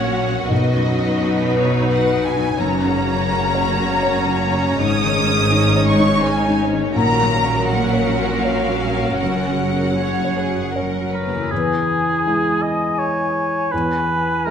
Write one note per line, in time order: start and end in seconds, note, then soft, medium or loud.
0.00 0.47 A#1 soft
0.00 0.47 A#2 soft
0.00 0.53 A#2 soft
0.00 0.54 A#2 soft
0.00 2.56 F#3 soft
0.00 0.26 A#3 soft
0.00 0.27 C#4 soft
0.00 0.47 C#4 soft
0.00 0.54 C#4 soft
0.00 0.03 F#4 soft
0.00 1.19 F#4 soft
0.00 2.56 F#4 soft
0.00 0.41 F#4 soft
0.00 0.47 C#5 soft
0.00 0.53 C#5 soft
0.00 0.47 F#5 medium
0.27 0.54 A#3 soft
0.27 0.51 C#4 soft
0.50 2.56 B1 soft
0.50 2.60 B1 soft
0.50 2.63 B2 soft
0.50 2.60 B2 soft
0.50 2.57 D#4 medium
0.50 2.56 B4 soft
0.50 1.55 D#5 medium
0.74 1.11 F#2 soft
0.74 2.36 F#3 soft
0.97 1.34 D#4 soft
0.97 2.12 D#4 soft
1.20 3.30 F#4 soft
1.20 1.58 F#4 soft
1.43 1.90 B4 soft
1.43 1.81 B4 soft
1.55 1.90 C#5 medium
1.66 2.04 F#4 soft
1.66 2.63 D#5 soft
1.90 2.27 B4 soft
1.90 2.63 B4 soft
1.90 2.25 F#5 medium
2.13 2.63 D#4 soft
2.13 2.51 F#4 soft
2.24 2.60 G#5 medium
2.36 4.82 F#3 soft
2.36 2.60 D#4 soft
2.59 4.75 F#1 soft
2.59 4.74 F#2 soft
2.59 4.75 F#2 medium
2.59 4.82 F#2 soft
2.59 4.75 A#3 soft
2.59 6.92 C#4 medium
2.59 4.75 F#4 soft
2.59 6.92 C#5 soft
2.59 4.79 A#5 medium
2.84 3.21 C#3 soft
2.84 4.53 C#3 soft
3.07 3.45 C#4 soft
3.07 4.27 C#4 soft
3.31 3.69 F#4 soft
3.31 3.77 F#4 soft
3.54 3.93 C#5 soft
3.54 4.02 C#5 soft
3.78 4.82 F#4 soft
3.78 4.18 F#4 soft
4.03 4.43 C#5 soft
4.03 5.75 C#5 soft
4.28 5.26 C#4 soft
4.28 4.69 F#4 soft
4.53 4.82 C#3 soft
4.53 4.79 C#4 soft
4.79 6.96 G#1 medium
4.79 6.96 G#2 medium
4.79 6.92 G#2 medium
4.79 6.99 G#2 soft
4.79 6.92 G#3 medium
4.79 6.92 D#4 medium
4.79 5.88 D#6 medium
5.03 5.42 D#3 soft
5.03 6.71 D#3 soft
5.28 6.47 C#4 soft
5.28 5.66 C#4 soft
5.51 5.99 D#4 soft
5.51 5.90 D#4 soft
5.76 6.15 C#5 soft
5.76 6.24 C#5 soft
5.87 6.23 C#6 medium
6.00 6.38 D#4 soft
6.00 6.99 D#4 soft
6.23 6.62 C#5 soft
6.23 8.18 C#5 soft
6.23 6.60 G#5 medium
6.48 7.43 C#4 soft
6.48 6.86 D#4 soft
6.72 6.99 D#3 soft
6.72 6.96 C#4 soft
6.95 9.17 A#1 medium
6.95 9.16 A#2 soft
6.95 9.24 A#2 soft
6.95 9.17 A#2 medium
6.95 11.26 F#3 medium
6.95 11.26 C#4 medium
6.95 9.87 F#4 medium
6.95 9.87 A#4 medium
6.95 7.64 A#5 medium
7.20 11.10 F#3 soft
7.20 7.59 A#3 soft
7.44 8.68 C#4 soft
7.44 7.84 C#4 soft
7.68 8.09 F#4 soft
7.68 9.98 F#4 soft
7.68 8.43 F#5 medium
7.93 8.33 C#5 soft
7.93 11.54 A#5 soft
8.18 8.59 F#4 soft
8.18 10.49 C#5 soft
8.43 8.85 C#5 soft
8.43 9.21 F5 medium
8.69 9.72 C#4 soft
8.69 9.10 F#4 soft
8.96 9.21 C#4 soft
9.20 11.31 F#1 soft
9.20 11.30 F#2 soft
9.20 11.54 F#2 soft
9.20 11.48 F#2 soft
9.20 11.09 F#5 soft
9.47 11.26 C#3 soft
9.47 9.88 C#3 soft
9.73 10.14 A#3 soft
9.73 11.00 C#4 soft
9.98 11.55 F#4 soft
9.98 10.40 F#4 soft
9.98 10.34 C#5 soft
10.24 10.65 C#5 soft
10.37 10.75 G#4 soft
10.50 10.90 F#4 soft
10.50 11.55 C#5 soft
10.74 11.13 A#4 soft
10.74 11.16 C#5 soft
11.01 11.55 C#4 soft
11.01 11.42 F#4 soft
11.13 11.52 A#4 soft
11.13 11.51 B4 soft
11.26 11.55 C#3 soft
11.26 11.51 A#3 soft
11.34 14.51 E2 soft
11.39 14.51 E4 soft
11.43 14.51 G#4 soft
11.47 14.51 B3 soft
11.47 13.68 E4 soft
11.47 12.64 G#4 medium
11.47 13.68 G#5 soft
11.52 12.23 E2 soft
12.26 13.68 G#3 soft
12.26 13.69 E4 soft
12.26 13.69 G#4 soft
12.62 13.00 D#5 medium
12.99 13.73 C#5 medium
13.72 14.44 E2 soft
13.72 14.51 E4 soft
13.72 14.47 B4 medium
13.72 14.51 G#5 soft
14.46 14.51 G#3 soft
14.46 14.51 G#4 soft
14.46 14.51 A#4 medium
14.46 14.51 E5 soft